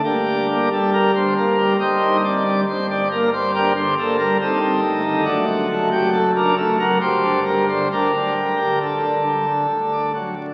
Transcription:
<<
  \new Staff \with { instrumentName = "Pipe organ" } { \time 3/4 \key g \minor \tempo 4 = 69 <bes d' g'>8. a'16 bes'16 c''16 bes'8 <g' c'' ees''>8 d''8 | c''16 d''16 bes'16 c''16 <d' g' bes'>16 c''16 a'16 bes'16 <c' ees' a'>4 | <a d' fis'>8. g'16 a'16 bes'16 a'16 bes'16 <g' c''>8 bes'16 c''16 | <d' g' bes'>4 <d' a'>4. r8 | }
  \new Staff \with { instrumentName = "Pipe organ" } { \clef bass \time 3/4 \key g \minor << { g,16 g16 bes16 g8 d16 bes16 g16 g,16 ees'16 c'16 g16 | g,16 g16 bes16 g8 d16 bes16 g16 g,16 c'16 a16 ees16 | fis,16 d'16 a16 fis8 d'16 a16 fis16 g,16 d'16 g16 d16 | d,16 d'16 g16 d8 d'16 g16 d16 d,16 d'16 fis16 d16 | } \\ { g,,2 g,,4 | g,,2 g,,4 | fis,,2 g,,4 | d,,2 d,,4 | } >> }
>>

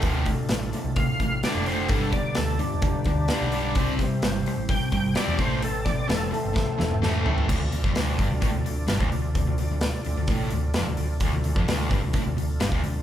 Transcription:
<<
  \new Staff \with { instrumentName = "Tonewheel organ" } { \time 4/4 \key a \minor \tempo 4 = 129 r2 f''4 d''8 c''8 | a'8 d''8 a'8 d'2~ d'8~ | d'8 r4. g''4 d''8 c''8 | a'8 d''8 a'8 a2~ a8 |
\key d \minor r1 | r1 | r1 | }
  \new Staff \with { instrumentName = "Tonewheel organ" } { \time 4/4 \key a \minor \tuplet 3/2 { <bes ees' fis' bes'>8 <a d' f' a'>4~ } <a d' f' a'>2. | <b d' g' b'>1 | <c' e' g' c''>2.~ <c' e' g' c''>8 <c' e' a' c''>8~ | <c' e' a' c''>1 |
\key d \minor <d' f' a' d''>1~ | <d' f' a' d''>1 | <d' f' a'>1 | }
  \new Staff \with { instrumentName = "Distorted electric guitar" } { \clef bass \time 4/4 \key a \minor <d, a, d>8 <d, a,>8 <d, a,>8 <d, a,>8 <d, a,>8 <d, a,>8 <d, a, d>8 <d, a, d>8 | <g, d g>8 <g, d>8 <g, d>8 <g, d>8 <g, d>8 <g, d>8 <g, d g>8 <g, d g>8 | <c g c'>8 <c g>8 <c g>8 <c g>8 <c g>8 <c g>8 <c g c'>8 <a, e a>8 | <a, e>8 <a, e>8 <a, e>8 <a, e>8 <a, e>8 <a, e>8 <a, e a>8 <a, e a>8 |
\key d \minor d,16 d,16 d,16 f,16 d,8 g,16 d,16 a,16 d,16 d,8 g,16 d,16 d,8 | d,16 d,16 d,16 d,8 r16 d,16 d,16 a,8 d,8 f,16 d,16 d,8 | d,16 d,16 d,16 f,16 d,8 g,16 d,16 a,16 d,16 d,8 g,16 d,16 d,8 | }
  \new Staff \with { instrumentName = "Overdriven electric guitar" } { \clef bass \time 4/4 \key a \minor <d, a, d>8 <d, a,>8 <d, a,>8 <d, a,>8 <d, a,>8 <d, a,>8 <d, a, d>8 <d, a, d>8 | <g, d g>8 <g, d>8 <g, d>8 <g, d>8 <g, d>8 <g, d>8 <g, d g>8 <g, d g>8 | <c g c'>8 <c g>8 <c g>8 <c g>8 <c g>8 <c g>8 <c g c'>8 <a, e a>8 | <a, e>8 <a, e>8 <a, e>8 <a, e>8 <a, e>8 <a, e>8 <a, e a>8 <a, e a>8 |
\key d \minor d,16 d,16 d,16 f,16 d,8 g,16 d,16 a,16 d,16 d,8 g,16 d,16 d,8 | d,16 d,16 d,16 d,8 r16 d,16 d,16 a,8 d,8 f,16 d,16 d,8 | d,16 d,16 d,16 f,16 d,8 g,16 d,16 a,16 d,16 d,8 g,16 d,16 d,8 | }
  \new Staff \with { instrumentName = "Picked electric bass" } { \clef bass \time 4/4 \key a \minor d,,8 r8 a,,8 r16 c,8 r16 a,,8 r16 f,,8. | g,,8 r8 d,8 r16 e,,8 r16 d,8 r16 b,,8. | c,8 r8 g,,8 r16 a,,8 r16 g,,8 r16 e,16 a,,8~ | a,,4 e,,8 r16 g,,8 r16 e,,8 e,,8 d,,8 |
\key d \minor d,,16 d,,16 d,,16 f,,16 d,,8 g,,16 d,,16 a,,16 d,,16 d,,8 g,,16 d,,16 d,,8 | d,,16 d,,16 d,,16 d,,8 r16 d,,16 d,,16 a,,8 d,,8 f,,16 d,,16 d,,8 | d,,16 d,,16 d,,16 f,,16 d,,8 g,,16 d,,16 a,,16 d,,16 d,,8 g,,16 d,,16 d,,8 | }
  \new DrumStaff \with { instrumentName = "Drums" } \drummode { \time 4/4 <hho bd>8 <hho bd>8 <hho sn>8 hho8 <hho bd>8 <hho bd>8 <hho sn>8 hho8 | <hho bd>8 <hho bd>8 <hho sn>8 hho8 <hho bd>8 <hho bd>8 <hho sn>8 hho8 | <hho bd>8 <hho bd sn>8 <hho sn>8 hho8 <hho bd>8 <hho bd>8 <hho sn>8 <hho bd>8 | hho8 <hho bd sn>8 <hho sn>8 hho8 <bd sn>8 sn16 toml16 sn8 tomfh16 tomfh16 |
<cymc bd>8 hho16 bd16 <hho sn>8 <hho bd>8 <hho bd>8 hho8 <hho sn>16 bd16 hho8 | <hho bd>8 hho8 <hho sn>8 hho8 <hho bd>8 hho8 <hho sn>8 hho8 | <hho bd>8 hho16 bd16 <hho sn>8 <hho bd>8 <hho bd>8 hho8 <hho sn>16 bd16 hho8 | }
>>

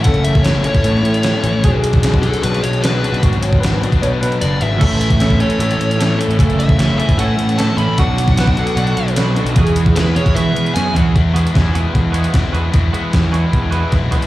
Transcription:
<<
  \new Staff \with { instrumentName = "Lead electric guitar" } { \time 4/4 \key a \major \tempo 4 = 152 fis''8 e''8 cis''8 cis''2~ cis''8~ | cis''8 r4 a'8 b'8 cis''8 b'4 | r2. d''8 e''8~ | e''8 e''4 cis''2 r8 |
r8 e''4 e''8 fis''4 a''8 b''8 | fis''2. r4 | r4 b'8 cis''8 e''4 gis''8 r8 | r1 |
r1 | }
  \new Staff \with { instrumentName = "Tine electric piano" } { \time 4/4 \key a \major a'1 | gis'1 | fis'8 cis''8 b'4 cis''8 b'4 r8 | a'2. a'4~ |
a'1 | fis'4 b'8 a'2~ a'8 | gis'2.~ gis'8 r8 | r1 |
r1 | }
  \new Staff \with { instrumentName = "Overdriven electric guitar" } { \time 4/4 \key a \major <a, e a cis' e'>4 <a, e a cis' e'>8 <a, e a cis' e'>8 <a, e a cis' e'>4 <a, e a cis' e'>8 <a, e a cis' e'>8 | <b, fis b d' fis'>4 <b, fis b d' fis'>8 <b, fis b d' fis'>8 <b, fis b d' fis'>4 <b, fis b d' fis'>8 <b, fis b d' fis'>8 | <b, fis b d' fis'>4 <b, fis b d' fis'>8 <b, fis b d' fis'>8 <b, fis b d' fis'>4 <b, fis b d' fis'>8 <b, fis b d' fis'>8 | <a, e a cis' e'>4 <a, e a cis' e'>8 <a, e a cis' e'>8 <a, e a cis' e'>4 <a, e a cis' e'>8 <a, e a cis' e'>8 |
<a, e a cis' e'>4 <a, e a cis' e'>8 <a, e a cis' e'>8 <a, e a cis' e'>4 <a, e a cis' e'>8 <a, e a cis' e'>8 | <b, fis b d' fis'>4 <b, fis b d' fis'>8 <b, fis b d' fis'>8 <b, fis b d' fis'>4 <b, fis b d' fis'>8 <b, fis b d' fis'>8 | <e b e' gis'>4 <e b e' gis'>8 <e b e' gis'>8 <e b e' gis'>4 <e b e' gis'>8 <e b e' gis'>8 | <e gis b e'>8 <gis b e'>8 <e gis b e'>4. <gis b e'>8 <e gis b e'>8 <gis b e'>8 |
<e gis b e'>8 <gis b e'>8 <e gis b e'>4. <gis b e'>8 <e gis b e'>8 <gis b e'>8 | }
  \new Staff \with { instrumentName = "Clean electric guitar" } { \time 4/4 \key a \major r1 | r1 | r1 | <a, e a cis' a'>4 <a, e a cis' a'>8 <a, e a cis' a'>8 <a, e a cis' a'>4 <a, e a cis' a'>8 <a, e a cis' a'>8 |
<a, e a cis' a'>4 <a, e a cis' a'>8 <a, e a cis' a'>8 <a, e a cis' a'>4 <a, e a cis' a'>8 <a, e a cis' a'>8 | <b, fis b d' fis'>4 <b, fis b d' fis'>8 <b, fis b d' fis'>8 <b, fis b d' fis'>4 <b, fis b d' fis'>8 <b, fis b d' fis'>8 | <e, b, e gis b fis'>4 <e, b, e gis b fis'>8 <e, b, e gis b fis'>8 <e, b, e gis b fis'>4 <e, b, e gis b fis'>8 <e, b, e gis b fis'>8 | r8 <e gis b fis'>8 r8 <e gis b fis'>8 r8 <e gis b fis'>8 r8 <e gis b fis'>8 |
r8 <e gis b fis'>8 r8 <e gis b fis'>8 r8 <e gis b fis'>8 r8 <e gis b fis'>8 | }
  \new Staff \with { instrumentName = "Picked electric bass" } { \clef bass \time 4/4 \key a \major fis,,2 a,8 a,4 a,,16 a,,16 | b,,2 b,,8 b,,4~ b,,16 b,,16 | gis,,2 b,8 b,8 fis,,8 gis,,8 | a,,2 a,,8 a,,4~ a,,16 a,,16 |
fis,,2 a,8 a,4 a,,16 a,,16 | b,,2 b,,8 b,,4~ b,,16 b,,16 | e,2 e8 e8 fis,8 e,8 | e,4 e,4 e,4 e,16 r16 e,8 |
e,8 r8 e,4 e,4 b,,8 r8 | }
  \new DrumStaff \with { instrumentName = "Drums" } \drummode { \time 4/4 <hh bd>16 hh16 hh16 bd16 <hh sn>8 hh16 <hh bd>16 hh16 sn16 hh16 hh16 <hh sn>8 hh8 | <hh bd>8 hh16 <hh bd>16 <hh sn>16 bd16 hh16 hh16 hh16 <hh sn>16 hh16 hh16 <hh sn>8 hh16 hh16 | <hh bd>16 hh16 hh16 bd16 <hh sn>8 hh16 <hh bd>16 hh8 hh16 hh16 hh8 hh8 | <cymc bd>8 hh16 <hh bd>16 <hh sn>16 bd16 hh16 hh16 hh16 <hh sn>16 hh16 hh16 <hh sn>8 hh16 hh16 |
<hh bd>16 hh16 hh16 bd16 <hh sn>8 hh16 <hh bd>16 hh8 hh16 hh16 <hh sn>8 hh8 | <hh bd>8 hh16 <hh bd>16 <hh sn>16 bd16 hh16 hh16 hh16 hh16 hh16 hh16 <hh sn>8 hh16 hh16 | <hh bd>16 hh16 hh16 bd16 <hh sn>8 hh16 <hh bd>16 hh8 hh16 hh16 <hh sn>8 <hh tomfh>8 | <hh bd>8 hh16 hh16 <hh bd sn>8 hh8 <hh bd>8 hh16 hh16 <hh bd sn>8 hh8 |
<hh bd>8 hh8 <hh bd sn>8 hh8 <hh bd>8 hh8 <hh bd sn>8 <hh tomfh>16 hh16 | }
>>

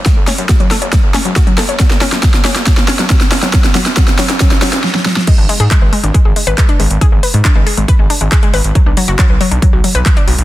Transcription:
<<
  \new Staff \with { instrumentName = "Synth arpeggio sound" } { \clef bass \time 4/4 \key b \dorian \tempo 4 = 138 fis16 r16 cis'16 fis16 fis'16 fis16 a'16 cis''16 fis16 r16 cis'16 fis16 fis'16 fis16 a'16 cis''16 | fis16 r16 cis'16 fis16 fis16 r16 cis'16 fis16 fis16 r16 cis'16 fis16 fis16 r16 cis'16 fis16 | fis16 r16 fis16 r16 fis16 r16 fis16 r16 fis16 r16 fis16 r4 r16 | gis16 d'16 gis16 gis'16 gis16 b'16 gis16 d'16 gis16 gis'16 gis16 b'16 gis16 d'16 gis16 r16 |
gis'16 gis16 b'16 gis16 d'16 gis16 gis'16 gis16 b'16 gis16 d'16 gis16 gis'16 gis16 b'16 r16 | fis16 d'16 fis16 fis'16 fis16 b'16 fis16 d'16 fis16 fis'16 fis16 b'16 fis16 d'16 fis16 r16 | }
  \new Staff \with { instrumentName = "Analog synth bass" } { \clef bass \time 4/4 \key b \dorian r16 fis,,16 r16 fis,16 r16 fis,,16 r16 fis,,16 r16 fis,,16 r16 fis,,16 r8 fis,,16 fis,,16 | r16 fis,,16 r16 fis,16 r16 fis,,16 r16 fis,,16 r16 fis,,16 r16 fis,,16 r8 fis,,16 fis,,16 | r16 fis,,16 r16 fis,16 r16 fis,,16 r16 fis,,16 r16 fis,,16 r16 fis,,16 r4 | r16 gis,,16 r16 gis,16 r16 gis,,16 r16 gis,,16 r16 gis,,16 r16 gis,,16 r8 gis,,16 gis,,16 |
r16 gis,,16 r16 gis,16 r16 gis,,16 r16 gis,,16 r16 gis,,16 r16 gis,,16 r8 gis,,16 gis,,16 | r16 b,,16 r16 fis,,16 r16 b,,16 r16 b,,16 r16 b,,16 r16 b,,16 r8 b,,16 b,,16 | }
  \new DrumStaff \with { instrumentName = "Drums" } \drummode { \time 4/4 <hh bd sn>8 <hho sn>16 hh16 <hh bd sn>16 hh16 <hho sn>16 hh16 <hh bd sn>8 <hho sn>16 hh16 <hh bd sn>16 hh16 <hho sn>16 hh16 | <hh bd sn>16 sn16 <hho sn>16 <hh sn>16 <hh bd sn>16 <hh sn>16 <hho sn>16 <hh sn>16 <hh bd sn>16 sn16 <hho sn>16 <hh sn>16 <hh bd sn>16 <hh sn>16 <hho sn>16 <hh sn>16 | <hh bd sn>16 <hh sn>16 <hho sn>16 <hh sn>16 <hh bd sn>16 <hh sn>16 <hho sn>16 <hh sn>16 <hh bd sn>16 sn16 <hho sn>16 <hh sn>16 sn16 sn16 sn16 sn16 | <cymc hh bd>8 hho16 hh16 <hc hh bd>8 hho16 hh16 <hh bd>8 hho16 hh16 <hc hh bd>16 hh16 hho16 hh16 |
<hh bd>8 hho16 hh16 <hc hh bd>8 hho16 hh16 <hh bd>8 hho16 hh16 <hc hh bd>16 hh16 hho16 hh16 | <hh bd>8 hho16 hh16 <hc hh bd>8 hho16 hh16 <hh bd>8 hho16 hh16 <hc hh bd>16 hh16 hho16 hh16 | }
>>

